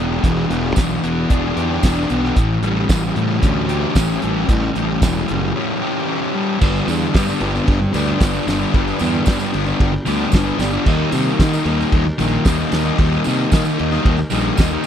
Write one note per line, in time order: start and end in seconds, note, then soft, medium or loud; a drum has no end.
0.00 0.18 E1 medium
0.00 0.24 E3 medium
0.00 0.49 B3 medium
0.00 1.04 D4 medium
0.00 1.56 G4 medium
0.24 0.44 E1 medium
0.24 0.76 E3 medium
0.24 kick loud
0.24 closed hi-hat medium
0.50 0.71 E1 medium
0.50 1.02 B3 medium
0.50 closed hi-hat medium
0.76 0.98 B1 medium
0.76 2.90 E3 medium
0.76 kick loud
0.76 snare loud
0.76 closed hi-hat medium
0.76 tambourine medium
1.03 1.24 E1 medium
1.03 2.09 B3 medium
1.03 closed hi-hat medium
1.30 1.51 E1 medium
1.30 1.82 D4 medium
1.30 kick loud
1.30 closed hi-hat medium
1.56 1.77 E2 medium
1.56 2.41 G4 medium
1.56 closed hi-hat medium
1.83 2.04 E1 medium
1.83 2.37 D4 medium
1.83 kick loud
1.83 snare loud
1.83 closed hi-hat medium
1.83 tambourine medium
2.10 2.31 B1 medium
2.10 2.37 B3 medium
2.10 closed hi-hat medium
2.25 snare soft
2.36 2.57 A1 medium
2.36 3.70 A2 medium
2.36 kick loud
2.36 closed hi-hat loud
2.63 2.84 A1 medium
2.63 3.16 G3 medium
2.63 closed hi-hat medium
2.89 3.10 A1 medium
2.89 4.23 E3 medium
2.89 kick loud
2.89 snare loud
2.89 closed hi-hat medium
2.89 tambourine medium
3.16 3.37 A2 medium
3.16 4.22 G3 medium
3.16 closed hi-hat medium
3.42 3.84 D2 medium
3.42 3.95 C#4 medium
3.42 kick loud
3.42 closed hi-hat medium
3.69 5.02 G4 medium
3.69 closed hi-hat medium
3.95 4.17 A1 medium
3.95 5.29 C#4 medium
3.95 kick loud
3.95 snare loud
3.95 closed hi-hat medium
3.95 tambourine loud
4.22 4.44 A1 medium
4.22 4.74 G3 medium
4.22 closed hi-hat medium
4.48 4.69 A1 medium
4.48 5.82 A2 medium
4.48 kick loud
4.48 closed hi-hat medium
4.75 4.97 A1 medium
4.75 5.28 G3 medium
4.75 closed hi-hat medium
5.02 5.23 E1 loud
5.02 6.35 E3 medium
5.02 kick loud
5.02 snare loud
5.02 closed hi-hat medium
5.02 tambourine loud
5.28 5.51 F#1 medium
5.28 6.34 G3 medium
5.28 closed hi-hat medium
5.56 6.07 C#4 medium
5.82 6.61 G4 medium
6.08 6.61 C#4 medium
6.35 6.60 G3 medium
6.59 6.79 G1 medium
6.59 7.13 G2 medium
6.59 6.85 D3 medium
6.59 6.87 G3 medium
6.59 6.89 B3 loud
6.59 6.89 D4 medium
6.59 kick loud
6.59 crash loud
6.59 tambourine soft
6.76 tambourine soft
6.86 7.05 E2 medium
6.86 7.13 D3 medium
6.86 7.14 G3 medium
6.86 7.15 B3 medium
6.86 7.16 D4 medium
6.86 ride medium
6.86 tambourine medium
7.13 8.19 G2 medium
7.13 7.32 G2 medium
7.13 7.39 D3 medium
7.13 7.29 G3 loud
7.13 7.28 B3 loud
7.13 7.26 D4 loud
7.13 kick loud
7.13 snare loud
7.13 ride medium
7.13 tambourine medium
7.27 7.40 G3 medium
7.27 7.41 B3 medium
7.27 7.42 D4 medium
7.27 tambourine medium
7.40 7.58 G1 medium
7.40 7.80 D3 medium
7.40 7.56 G3 medium
7.40 7.54 B3 medium
7.40 7.52 D4 medium
7.40 ride medium
7.40 tambourine soft
7.54 7.80 G3 medium
7.54 7.80 B3 medium
7.54 7.79 D4 medium
7.54 snare soft
7.54 tambourine soft
7.68 7.85 G1 medium
7.68 kick loud
7.68 ride loud
7.80 muted distorted electric guitar stroke soft
7.93 8.12 D2 medium
7.93 8.19 D3 medium
7.93 8.21 G3 medium
7.93 8.20 B3 medium
7.93 8.21 D4 medium
7.93 ride medium
7.93 tambourine medium
8.19 8.38 G1 medium
8.19 8.60 G2 medium
8.19 8.45 D3 loud
8.19 8.36 G3 medium
8.19 8.33 B3 loud
8.19 8.32 D4 medium
8.19 kick loud
8.19 snare loud
8.19 ride medium
8.19 tambourine medium
8.33 8.47 G3 medium
8.33 8.47 B3 medium
8.33 8.48 D4 medium
8.46 8.64 G1 medium
8.46 8.73 D3 medium
8.46 8.62 G3 medium
8.46 8.59 B3 medium
8.46 8.58 D4 medium
8.46 snare medium
8.46 ride medium
8.46 tambourine medium
8.59 8.74 G3 medium
8.59 8.74 B3 medium
8.59 8.75 D4 medium
8.59 tambourine soft
8.73 8.91 G1 medium
8.73 9.24 G2 medium
8.73 8.98 D3 medium
8.73 9.00 G3 medium
8.73 9.00 B3 loud
8.73 9.01 D4 loud
8.73 kick loud
8.73 ride medium
8.73 tambourine soft
8.87 tambourine soft
8.99 9.18 E2 loud
8.99 9.25 D3 medium
8.99 9.26 G3 medium
8.99 9.26 B3 medium
8.99 9.27 D4 medium
8.99 ride medium
8.99 tambourine medium
9.25 9.66 G2 medium
9.25 9.44 G2 medium
9.25 9.51 D3 loud
9.25 9.42 G3 loud
9.25 9.40 B3 loud
9.25 9.38 D4 loud
9.25 kick loud
9.25 snare loud
9.25 ride loud
9.25 tambourine medium
9.39 9.54 G3 medium
9.39 9.53 B3 medium
9.39 9.54 D4 medium
9.39 tambourine medium
9.52 9.72 G1 medium
9.52 9.93 D3 medium
9.52 9.68 G3 medium
9.52 9.66 B3 medium
9.52 9.64 D4 medium
9.52 ride medium
9.52 tambourine soft
9.66 9.94 G3 medium
9.66 9.92 B3 medium
9.66 9.92 D4 medium
9.66 tambourine soft
9.80 9.97 G1 medium
9.80 kick loud
9.80 ride loud
9.93 muted distorted electric guitar stroke medium
10.05 10.24 D2 medium
10.05 10.31 D3 medium
10.05 10.32 G3 medium
10.05 10.32 B3 medium
10.05 10.33 D4 medium
10.05 ride medium
10.05 tambourine medium
10.31 10.50 G1 medium
10.31 10.72 G2 medium
10.31 10.56 D3 medium
10.31 10.46 G3 medium
10.31 10.44 B3 medium
10.31 10.43 D4 medium
10.31 kick loud
10.31 snare loud
10.31 ride loud
10.31 tambourine medium
10.44 10.58 G3 medium
10.44 10.58 B3 medium
10.44 10.59 D4 medium
10.58 10.77 G1 medium
10.58 10.84 D3 medium
10.58 10.75 G3 medium
10.58 10.73 B3 medium
10.58 10.71 D4 medium
10.58 snare medium
10.58 ride medium
10.58 tambourine medium
10.72 10.86 G3 medium
10.72 10.85 B3 medium
10.72 10.84 D4 medium
10.72 tambourine soft
10.85 11.03 D#2 medium
10.85 11.12 D#3 medium
10.85 11.13 G3 medium
10.85 11.14 A#3 medium
10.85 11.15 D#4 loud
10.85 kick loud
10.85 crash loud
10.85 tambourine soft
11.12 11.30 C3 medium
11.12 11.38 D#3 medium
11.12 11.40 G3 medium
11.12 11.41 A#3 medium
11.12 11.41 D#4 medium
11.12 ride medium
11.12 tambourine medium
11.39 11.65 D#3 medium
11.39 11.57 D#3 loud
11.39 11.55 G3 loud
11.39 11.54 A#3 loud
11.39 11.52 D#4 loud
11.39 kick loud
11.39 snare loud
11.39 ride medium
11.39 tambourine medium
11.53 11.66 G3 medium
11.53 11.67 A#3 medium
11.53 11.68 D#4 medium
11.53 tambourine medium
11.65 11.83 D#2 loud
11.65 12.06 D#3 medium
11.65 11.81 G3 medium
11.65 11.79 A#3 medium
11.65 11.77 D#4 medium
11.65 ride medium
11.65 tambourine soft
11.78 12.06 G3 medium
11.78 12.05 A#3 medium
11.78 12.05 D#4 medium
11.78 snare soft
11.78 tambourine soft
11.92 12.10 D#2 medium
11.92 kick loud
11.92 ride medium
12.06 muted distorted electric guitar stroke medium
12.18 12.37 A#1 medium
12.18 12.43 D#3 medium
12.18 12.46 G3 medium
12.18 12.46 A#3 medium
12.18 12.46 D#4 medium
12.18 ride medium
12.18 tambourine medium
12.45 12.63 D#2 medium
12.45 12.71 D#3 medium
12.45 12.61 G3 medium
12.45 12.59 A#3 loud
12.45 12.57 D#4 medium
12.45 kick loud
12.45 snare loud
12.45 ride loud
12.45 tambourine medium
12.58 12.73 G3 medium
12.58 12.73 A#3 medium
12.58 12.74 D#4 medium
12.72 12.90 D#2 medium
12.72 12.97 D#3 medium
12.72 12.87 G3 medium
12.72 12.85 A#3 medium
12.72 12.83 D#4 medium
12.72 snare medium
12.72 ride medium
12.72 tambourine medium
12.85 12.99 G3 medium
12.85 12.99 A#3 medium
12.85 13.00 D#4 medium
12.98 13.16 D#2 medium
12.98 13.25 D#3 medium
12.98 13.27 G3 medium
12.98 13.27 A#3 loud
12.98 13.27 D#4 medium
12.98 kick loud
12.98 ride medium
12.98 tambourine soft
13.12 tambourine soft
13.24 13.44 C3 medium
13.24 13.50 D#3 medium
13.24 13.52 G3 medium
13.24 13.52 A#3 medium
13.24 ride medium
13.24 tambourine medium
13.29 13.53 D#4 medium
13.51 13.77 D#3 loud
13.51 13.69 D#3 medium
13.51 13.67 G3 medium
13.51 13.65 A#3 medium
13.51 13.63 D#4 loud
13.51 kick loud
13.51 snare loud
13.51 ride medium
13.51 tambourine medium
13.65 13.79 G3 medium
13.65 13.79 A#3 medium
13.65 13.80 D#4 medium
13.65 tambourine medium
13.79 13.97 D#2 medium
13.79 14.19 D#3 medium
13.79 13.94 G3 medium
13.79 13.92 A#3 medium
13.79 13.90 D#4 medium
13.79 ride medium
13.91 14.19 G3 medium
13.91 14.18 A#3 medium
13.91 14.18 D#4 medium
13.91 snare soft
13.91 tambourine soft
14.05 14.23 D#2 medium
14.05 kick loud
14.05 ride loud
14.17 muted distorted electric guitar stroke soft
14.17 tambourine soft
14.30 14.49 A#1 medium
14.30 14.57 D#3 medium
14.30 14.58 G3 medium
14.30 14.59 A#3 medium
14.30 ride medium
14.30 tambourine medium
14.34 14.60 D#4 medium
14.44 tambourine soft
14.57 14.76 D#2 medium
14.57 14.83 D#3 medium
14.57 14.74 G3 loud
14.57 14.72 A#3 medium
14.57 14.70 D#4 loud
14.57 kick loud
14.57 snare loud
14.57 ride loud
14.57 tambourine loud
14.71 14.85 G3 medium
14.71 14.86 A#3 medium
14.71 14.86 D#4 medium